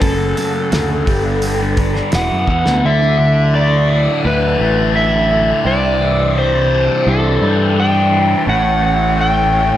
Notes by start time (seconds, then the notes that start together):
0.00 F#1 F#2 C#3 F#3 A3 C#4 A4, kick, open hi-hat
0.37 F#2 C#3 F#3, open hi-hat
0.72 D2 F#2 C#3 F#3, snare, open hi-hat
0.89 C#3 F#3
1.06 G1 G2 D3 G3 B3 D4 B4, kick, open hi-hat
1.24 D3 G3
1.42 open hi-hat
1.60 D3 G3
1.77 G2 D3 G3, kick, open hi-hat
1.94 D3 G3, snare
2.12 E1 E2 B2 E3 G#3 B3 E4 F#5, snare, open hi-hat
2.31 F#2
2.47 E2 B2 E3, kick
2.65 D2 B2 E3, snare
2.83 D2 D3 F#3 D4 E4 A4 E5
3.18 D3
3.54 A3 D5
3.89 E4
4.24 D2 D3 B4
4.60 A1 A3
4.95 E4 E5
5.29 D3
5.64 C2 C3 G3 C5 D5
5.99 E3
6.36 G3 C5
6.70 D4
7.05 C2 E3 A4
7.41 G2 G3
7.76 D4 G5
8.10 E3
8.46 A1 A2 A3 C#4 C#5 F#5
8.82 E3
9.17 A3 G5
9.52 C#4